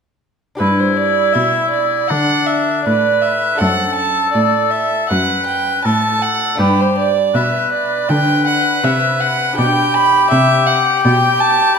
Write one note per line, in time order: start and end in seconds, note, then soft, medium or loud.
0.55 2.79 D4 soft
0.55 3.55 G4 soft
0.55 3.56 B4 soft
0.55 0.81 B4 medium
0.60 1.31 G2 soft
0.60 1.31 G2 medium
0.60 2.12 E4 medium
0.79 0.98 C5 medium
0.97 1.35 D5 medium
1.33 2.06 B2 soft
1.33 2.07 B2 soft
1.33 1.70 E5 medium
1.71 2.10 D5 medium
2.08 2.81 D3 soft
2.08 2.82 D3 medium
2.08 2.86 D4 soft
2.08 2.48 F#5 medium
2.47 2.84 E5 medium
2.85 3.56 A2 soft
2.85 3.56 A2 medium
2.85 3.59 B4 soft
2.85 3.23 D5 medium
3.22 3.60 E5 medium
3.55 6.53 D4 soft
3.55 6.54 A4 soft
3.55 6.55 C5 soft
3.55 3.95 F#5 medium
3.60 4.30 F#2 soft
3.60 4.31 F#2 medium
3.60 5.07 A4 medium
3.95 4.32 A5 medium
4.33 5.06 A2 medium
4.33 5.06 A2 soft
4.33 4.72 D5 medium
4.71 5.08 E5 medium
5.09 5.81 F#2 soft
5.09 5.81 F#2 medium
5.09 5.87 B4 medium
5.09 5.46 F#5 medium
5.46 5.84 G5 medium
5.85 6.55 A2 medium
5.85 6.56 A2 soft
5.85 6.59 A4 soft
5.85 6.24 A5 medium
6.22 6.60 F#5 medium
6.55 7.30 G2 medium
6.55 8.77 D4 soft
6.55 9.52 G4 soft
6.55 9.53 B4 soft
6.59 7.31 G2 soft
6.59 7.07 G4 medium
6.59 6.82 B4 medium
6.81 6.97 C5 medium
6.98 7.37 D5 medium
7.34 8.05 B2 medium
7.34 8.05 B2 soft
7.34 8.05 B4 medium
7.34 7.72 E5 medium
7.72 8.11 D5 medium
8.09 8.79 D3 soft
8.09 8.80 D3 medium
8.09 9.55 B4 medium
8.09 8.46 G5 medium
8.47 8.86 F#5 medium
8.84 9.54 C3 soft
8.84 9.54 C3 medium
8.84 9.22 E5 medium
9.20 9.57 F#5 medium
9.53 11.79 D4 soft
9.53 11.79 B4 soft
9.58 10.28 B2 soft
9.58 10.28 B2 medium
9.58 11.79 G4 medium
9.58 9.96 G5 medium
9.95 10.30 B5 medium
10.31 11.01 C3 soft
10.31 11.01 C3 medium
10.31 10.68 E5 medium
10.67 11.03 F#5 medium
11.03 11.74 B2 soft
11.03 11.75 B2 medium
11.03 11.42 G5 medium
11.40 11.77 A5 medium